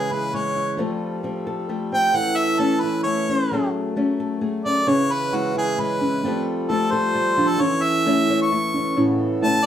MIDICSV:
0, 0, Header, 1, 5, 480
1, 0, Start_track
1, 0, Key_signature, 3, "major"
1, 0, Tempo, 454201
1, 831, Time_signature, 3, 2, 24, 8
1, 10210, End_track
2, 0, Start_track
2, 0, Title_t, "Harmonica"
2, 0, Program_c, 0, 22
2, 0, Note_on_c, 0, 68, 72
2, 133, Note_on_c, 0, 71, 81
2, 149, Note_off_c, 0, 68, 0
2, 370, Note_on_c, 0, 73, 86
2, 386, Note_off_c, 0, 71, 0
2, 840, Note_off_c, 0, 73, 0
2, 2046, Note_on_c, 0, 79, 101
2, 2280, Note_on_c, 0, 78, 104
2, 2296, Note_off_c, 0, 79, 0
2, 2506, Note_on_c, 0, 76, 92
2, 2522, Note_off_c, 0, 78, 0
2, 2746, Note_on_c, 0, 69, 81
2, 2762, Note_off_c, 0, 76, 0
2, 2964, Note_on_c, 0, 71, 77
2, 2980, Note_off_c, 0, 69, 0
2, 3201, Note_off_c, 0, 71, 0
2, 3207, Note_on_c, 0, 73, 77
2, 3898, Note_off_c, 0, 73, 0
2, 4918, Note_on_c, 0, 74, 91
2, 5161, Note_on_c, 0, 73, 97
2, 5177, Note_off_c, 0, 74, 0
2, 5410, Note_on_c, 0, 71, 96
2, 5426, Note_off_c, 0, 73, 0
2, 5669, Note_on_c, 0, 66, 86
2, 5685, Note_off_c, 0, 71, 0
2, 5891, Note_off_c, 0, 66, 0
2, 5898, Note_on_c, 0, 68, 85
2, 6130, Note_on_c, 0, 71, 84
2, 6146, Note_off_c, 0, 68, 0
2, 6842, Note_off_c, 0, 71, 0
2, 7062, Note_on_c, 0, 69, 78
2, 7308, Note_on_c, 0, 72, 85
2, 7324, Note_off_c, 0, 69, 0
2, 7916, Note_on_c, 0, 69, 88
2, 7932, Note_off_c, 0, 72, 0
2, 8043, Note_on_c, 0, 73, 94
2, 8059, Note_off_c, 0, 69, 0
2, 8282, Note_on_c, 0, 76, 97
2, 8297, Note_off_c, 0, 73, 0
2, 8876, Note_off_c, 0, 76, 0
2, 8897, Note_on_c, 0, 85, 98
2, 9561, Note_off_c, 0, 85, 0
2, 9968, Note_on_c, 0, 81, 108
2, 10210, Note_off_c, 0, 81, 0
2, 10210, End_track
3, 0, Start_track
3, 0, Title_t, "Felt piano"
3, 0, Program_c, 1, 0
3, 5149, Note_on_c, 1, 61, 89
3, 5621, Note_off_c, 1, 61, 0
3, 5629, Note_on_c, 1, 64, 76
3, 6102, Note_off_c, 1, 64, 0
3, 6351, Note_on_c, 1, 61, 75
3, 6587, Note_off_c, 1, 61, 0
3, 6589, Note_on_c, 1, 60, 83
3, 7061, Note_off_c, 1, 60, 0
3, 7071, Note_on_c, 1, 65, 79
3, 7542, Note_off_c, 1, 65, 0
3, 7793, Note_on_c, 1, 62, 76
3, 8028, Note_off_c, 1, 62, 0
3, 8034, Note_on_c, 1, 61, 92
3, 8503, Note_off_c, 1, 61, 0
3, 8517, Note_on_c, 1, 64, 81
3, 8984, Note_off_c, 1, 64, 0
3, 9233, Note_on_c, 1, 61, 76
3, 9458, Note_off_c, 1, 61, 0
3, 9474, Note_on_c, 1, 61, 93
3, 9943, Note_off_c, 1, 61, 0
3, 9951, Note_on_c, 1, 64, 83
3, 10210, Note_off_c, 1, 64, 0
3, 10210, End_track
4, 0, Start_track
4, 0, Title_t, "Harmonium"
4, 0, Program_c, 2, 20
4, 0, Note_on_c, 2, 52, 64
4, 0, Note_on_c, 2, 61, 59
4, 0, Note_on_c, 2, 71, 71
4, 816, Note_off_c, 2, 61, 0
4, 818, Note_off_c, 2, 71, 0
4, 822, Note_off_c, 2, 52, 0
4, 825, Note_on_c, 2, 69, 74
4, 831, Note_on_c, 2, 55, 72
4, 836, Note_on_c, 2, 65, 64
4, 2247, Note_off_c, 2, 69, 0
4, 2258, Note_off_c, 2, 55, 0
4, 2260, Note_off_c, 2, 65, 0
4, 2263, Note_on_c, 2, 69, 79
4, 2270, Note_on_c, 2, 52, 69
4, 2272, Note_on_c, 2, 61, 62
4, 3694, Note_off_c, 2, 69, 0
4, 3698, Note_off_c, 2, 52, 0
4, 3699, Note_off_c, 2, 61, 0
4, 3722, Note_on_c, 2, 54, 68
4, 3722, Note_on_c, 2, 57, 61
4, 5140, Note_on_c, 2, 61, 65
4, 5141, Note_on_c, 2, 52, 69
4, 5144, Note_off_c, 2, 54, 0
4, 5144, Note_off_c, 2, 57, 0
4, 5145, Note_on_c, 2, 71, 83
4, 6572, Note_off_c, 2, 61, 0
4, 6573, Note_off_c, 2, 52, 0
4, 6575, Note_off_c, 2, 71, 0
4, 6584, Note_on_c, 2, 69, 89
4, 6587, Note_on_c, 2, 65, 65
4, 6589, Note_on_c, 2, 55, 72
4, 8015, Note_off_c, 2, 65, 0
4, 8016, Note_off_c, 2, 55, 0
4, 8031, Note_on_c, 2, 61, 68
4, 8034, Note_on_c, 2, 52, 72
4, 9437, Note_off_c, 2, 69, 0
4, 9456, Note_off_c, 2, 61, 0
4, 9457, Note_off_c, 2, 52, 0
4, 9463, Note_on_c, 2, 49, 80
4, 9465, Note_on_c, 2, 69, 85
4, 9471, Note_on_c, 2, 59, 71
4, 10210, Note_off_c, 2, 49, 0
4, 10210, Note_off_c, 2, 59, 0
4, 10210, Note_off_c, 2, 69, 0
4, 10210, End_track
5, 0, Start_track
5, 0, Title_t, "Nylon-string guitar"
5, 0, Program_c, 3, 24
5, 0, Note_on_c, 3, 49, 69
5, 0, Note_on_c, 3, 56, 60
5, 0, Note_on_c, 3, 64, 60
5, 116, Note_on_c, 3, 68, 53
5, 341, Note_off_c, 3, 56, 0
5, 353, Note_on_c, 3, 56, 59
5, 354, Note_off_c, 3, 68, 0
5, 364, Note_on_c, 3, 68, 55
5, 577, Note_off_c, 3, 64, 0
5, 590, Note_on_c, 3, 64, 50
5, 800, Note_off_c, 3, 49, 0
5, 802, Note_off_c, 3, 64, 0
5, 803, Note_off_c, 3, 56, 0
5, 809, Note_off_c, 3, 68, 0
5, 814, Note_on_c, 3, 53, 69
5, 827, Note_on_c, 3, 57, 59
5, 830, Note_on_c, 3, 60, 55
5, 839, Note_on_c, 3, 67, 60
5, 846, Note_on_c, 3, 69, 61
5, 1298, Note_off_c, 3, 57, 0
5, 1299, Note_off_c, 3, 60, 0
5, 1302, Note_on_c, 3, 57, 61
5, 1311, Note_on_c, 3, 60, 61
5, 1546, Note_off_c, 3, 69, 0
5, 1550, Note_on_c, 3, 69, 60
5, 1780, Note_off_c, 3, 67, 0
5, 1783, Note_off_c, 3, 57, 0
5, 1787, Note_on_c, 3, 57, 58
5, 1793, Note_on_c, 3, 67, 54
5, 2020, Note_off_c, 3, 60, 0
5, 2032, Note_on_c, 3, 60, 56
5, 2234, Note_off_c, 3, 53, 0
5, 2244, Note_off_c, 3, 67, 0
5, 2261, Note_on_c, 3, 52, 73
5, 2264, Note_on_c, 3, 64, 56
5, 2272, Note_off_c, 3, 60, 0
5, 2730, Note_off_c, 3, 57, 0
5, 2734, Note_on_c, 3, 57, 63
5, 2741, Note_on_c, 3, 61, 60
5, 2988, Note_off_c, 3, 64, 0
5, 2998, Note_on_c, 3, 64, 55
5, 3215, Note_off_c, 3, 57, 0
5, 3221, Note_off_c, 3, 64, 0
5, 3228, Note_on_c, 3, 57, 57
5, 3233, Note_on_c, 3, 64, 57
5, 3471, Note_off_c, 3, 61, 0
5, 3476, Note_on_c, 3, 61, 59
5, 3679, Note_off_c, 3, 52, 0
5, 3682, Note_off_c, 3, 57, 0
5, 3712, Note_off_c, 3, 69, 0
5, 3713, Note_off_c, 3, 64, 0
5, 3714, Note_on_c, 3, 54, 68
5, 3724, Note_off_c, 3, 61, 0
5, 3725, Note_on_c, 3, 57, 54
5, 3728, Note_on_c, 3, 61, 57
5, 3734, Note_on_c, 3, 68, 61
5, 3742, Note_on_c, 3, 69, 65
5, 4177, Note_off_c, 3, 57, 0
5, 4190, Note_on_c, 3, 57, 62
5, 4191, Note_off_c, 3, 61, 0
5, 4195, Note_on_c, 3, 61, 63
5, 4424, Note_off_c, 3, 69, 0
5, 4437, Note_on_c, 3, 69, 55
5, 4651, Note_off_c, 3, 57, 0
5, 4652, Note_off_c, 3, 68, 0
5, 4663, Note_on_c, 3, 57, 58
5, 4665, Note_on_c, 3, 68, 55
5, 4908, Note_off_c, 3, 61, 0
5, 4921, Note_on_c, 3, 61, 58
5, 5120, Note_off_c, 3, 57, 0
5, 5120, Note_off_c, 3, 68, 0
5, 5125, Note_off_c, 3, 54, 0
5, 5128, Note_off_c, 3, 61, 0
5, 5143, Note_on_c, 3, 49, 70
5, 5150, Note_on_c, 3, 68, 61
5, 5155, Note_off_c, 3, 69, 0
5, 5628, Note_on_c, 3, 56, 62
5, 5641, Note_on_c, 3, 64, 59
5, 5859, Note_off_c, 3, 64, 0
5, 5871, Note_on_c, 3, 64, 57
5, 6100, Note_off_c, 3, 68, 0
5, 6101, Note_off_c, 3, 56, 0
5, 6113, Note_on_c, 3, 56, 62
5, 6114, Note_on_c, 3, 68, 58
5, 6345, Note_off_c, 3, 64, 0
5, 6358, Note_on_c, 3, 64, 55
5, 6559, Note_off_c, 3, 49, 0
5, 6564, Note_off_c, 3, 68, 0
5, 6565, Note_off_c, 3, 56, 0
5, 6567, Note_off_c, 3, 64, 0
5, 6596, Note_on_c, 3, 53, 70
5, 6604, Note_on_c, 3, 57, 63
5, 6609, Note_on_c, 3, 60, 62
5, 6619, Note_on_c, 3, 67, 63
5, 6627, Note_on_c, 3, 69, 63
5, 7070, Note_off_c, 3, 57, 0
5, 7075, Note_on_c, 3, 57, 68
5, 7076, Note_off_c, 3, 60, 0
5, 7089, Note_on_c, 3, 60, 65
5, 7313, Note_off_c, 3, 69, 0
5, 7318, Note_on_c, 3, 69, 65
5, 7552, Note_off_c, 3, 57, 0
5, 7556, Note_on_c, 3, 55, 63
5, 7779, Note_off_c, 3, 53, 0
5, 7792, Note_on_c, 3, 53, 67
5, 7794, Note_off_c, 3, 55, 0
5, 8016, Note_off_c, 3, 67, 0
5, 8027, Note_off_c, 3, 53, 0
5, 8031, Note_on_c, 3, 52, 74
5, 8037, Note_on_c, 3, 64, 60
5, 8040, Note_off_c, 3, 60, 0
5, 8519, Note_on_c, 3, 57, 74
5, 8524, Note_on_c, 3, 61, 66
5, 8765, Note_off_c, 3, 69, 0
5, 8769, Note_on_c, 3, 73, 64
5, 8990, Note_off_c, 3, 57, 0
5, 9001, Note_off_c, 3, 64, 0
5, 9002, Note_on_c, 3, 57, 65
5, 9005, Note_on_c, 3, 64, 62
5, 9244, Note_off_c, 3, 61, 0
5, 9248, Note_on_c, 3, 61, 58
5, 9448, Note_off_c, 3, 57, 0
5, 9474, Note_off_c, 3, 64, 0
5, 9474, Note_on_c, 3, 45, 76
5, 9479, Note_on_c, 3, 64, 65
5, 9961, Note_on_c, 3, 57, 75
5, 9966, Note_off_c, 3, 61, 0
5, 9970, Note_on_c, 3, 61, 65
5, 10200, Note_off_c, 3, 73, 0
5, 10210, Note_off_c, 3, 45, 0
5, 10210, Note_off_c, 3, 52, 0
5, 10210, Note_off_c, 3, 57, 0
5, 10210, Note_off_c, 3, 61, 0
5, 10210, Note_off_c, 3, 64, 0
5, 10210, End_track
0, 0, End_of_file